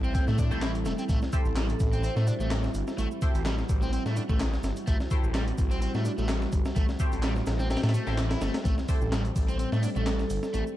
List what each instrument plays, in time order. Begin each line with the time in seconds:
Already playing: detuned saw bass A1, ambient pad G3 C4 E4 A4
0.04 overdriven electric guitar C4, shaker
0.15 overdriven electric guitar C4, kick, closed hi-hat, shaker
0.27 detuned saw bass A2, overdriven electric guitar A3, snare, shaker
0.38 overdriven electric guitar D4, kick, closed hi-hat, shaker
0.51 detuned saw bass A1, synth stab A3 E4 G4 C5, overdriven electric guitar A3, shaker
0.62 overdriven electric guitar E4, snare, clap, closed hi-hat, shaker
0.75 closed hi-hat, shaker
0.85 detuned saw bass E1, overdriven electric guitar A3, snare, closed hi-hat, shaker
0.98 overdriven electric guitar C4, closed hi-hat, shaker
1.09 detuned saw bass A1, overdriven electric guitar A3, ambient pad F#4, kick, closed hi-hat, shaker
1.22 snare, shaker
1.33 synth stab A3 E4 G4 C5, vibraphone A4, kick, closed hi-hat, shaker
1.45 detuned saw bass A1, shaker
1.56 overdriven electric guitar G3, snare, clap, closed hi-hat, shaker
1.69 vibraphone A4, closed hi-hat, shaker
1.80 detuned saw bass A1, vibraphone A4, kick, closed hi-hat, shaker
1.93 overdriven electric guitar C4, closed hi-hat, shaker
2.03 overdriven electric guitar C4, vibraphone C5, closed hi-hat, shaker
2.16 detuned saw bass A2, overdriven electric guitar A3, snare, shaker
2.27 overdriven electric guitar D4, closed hi-hat, shaker
2.40 detuned saw bass A1, overdriven electric guitar A3, shaker
2.51 snare, clap, closed hi-hat, shaker
2.63 snare, shaker
2.74 detuned saw bass G1, closed hi-hat, shaker
2.88 snare, shaker
2.98 detuned saw bass A1, overdriven electric guitar A3, closed hi-hat, shaker
3.11 shaker
3.22 synth stab A3 E4 G4 C5, kick, closed hi-hat, shaker
3.35 detuned saw bass A1, closed hi-hat, shaker
3.46 overdriven electric guitar G3, snare, clap, closed hi-hat, shaker
3.58 snare, shaker
3.69 detuned saw bass A1, kick, closed hi-hat, shaker
3.82 overdriven electric guitar C4, shaker
3.93 overdriven electric guitar C4, closed hi-hat, shaker
4.06 detuned saw bass A2, overdriven electric guitar A3, snare, shaker
4.17 overdriven electric guitar D4, closed hi-hat, shaker
4.29 detuned saw bass A1, overdriven electric guitar A3, kick, shaker
4.40 snare, clap, closed hi-hat, shaker
4.53 snare, shaker
4.63 detuned saw bass G1, snare, closed hi-hat, shaker
4.76 closed hi-hat, shaker
4.87 detuned saw bass A1, overdriven electric guitar A3, kick, closed hi-hat, shaker
5.00 snare, shaker
5.11 synth stab A3 E4 G4 C5, kick, closed hi-hat, shaker
5.24 detuned saw bass A1, shaker
5.35 overdriven electric guitar G3, snare, clap, closed hi-hat, shaker
5.47 closed hi-hat, shaker
5.58 detuned saw bass A1, kick, closed hi-hat, shaker
5.71 overdriven electric guitar C4, closed hi-hat, shaker
5.82 overdriven electric guitar C4, closed hi-hat, shaker
5.94 detuned saw bass A2, overdriven electric guitar A3, snare, shaker
6.05 overdriven electric guitar D4, closed hi-hat, shaker
6.18 detuned saw bass A1, overdriven electric guitar A3, shaker
6.29 snare, clap, closed hi-hat, shaker
6.42 snare, shaker
6.52 detuned saw bass G1, kick, closed hi-hat, shaker
6.65 snare, shaker
6.76 detuned saw bass A1, overdriven electric guitar A3, kick, closed hi-hat, shaker
6.89 snare, shaker
6.99 synth stab A3 E4 G4 C5, kick, closed hi-hat, shaker
7.12 detuned saw bass A1, closed hi-hat, shaker
7.23 overdriven electric guitar G3, snare, clap, closed hi-hat, shaker
7.36 snare, shaker
7.46 detuned saw bass A1, snare, closed hi-hat, shaker
7.59 overdriven electric guitar C4, snare, shaker
7.70 overdriven electric guitar C4, snare, closed hi-hat, shaker
7.77 snare, closed hi-hat
7.83 detuned saw bass A2, overdriven electric guitar A3, snare, closed hi-hat, shaker
7.89 snare, closed hi-hat
7.94 overdriven electric guitar A3, closed hi-hat, shaker
8.07 detuned saw bass A1, synth stab A3 E4 G4 C5, overdriven electric guitar C4, snare, shaker
8.18 snare, clap, closed hi-hat, shaker
8.30 overdriven electric guitar E4, snare, closed hi-hat, shaker
8.41 detuned saw bass G1, overdriven electric guitar A3, snare, closed hi-hat, shaker
8.54 snare, closed hi-hat, shaker
8.65 detuned saw bass A1, overdriven electric guitar A3, ambient pad D4 A4, kick, closed hi-hat, shaker
8.78 snare, shaker
8.89 synth stab A3 E4 G4 C5, vibraphone A4, kick, closed hi-hat, open hi-hat, shaker
9.01 detuned saw bass A1, shaker
9.12 overdriven electric guitar G3, snare, clap, closed hi-hat, shaker
9.25 closed hi-hat, shaker
9.36 detuned saw bass A1, kick, closed hi-hat, open hi-hat, shaker
9.48 overdriven electric guitar C4, closed hi-hat, shaker
9.59 overdriven electric guitar C4, closed hi-hat, shaker
9.72 detuned saw bass A2, overdriven electric guitar A3, snare, shaker
9.83 overdriven electric guitar D4, closed hi-hat, open hi-hat, shaker
9.96 detuned saw bass A1, overdriven electric guitar A3, vibraphone A4, shaker
10.07 snare, clap, closed hi-hat, shaker
10.19 snare, shaker
10.30 detuned saw bass G1, closed hi-hat, open hi-hat, shaker
10.43 snare, shaker
10.54 detuned saw bass A1, overdriven electric guitar A3, closed hi-hat, shaker
10.67 shaker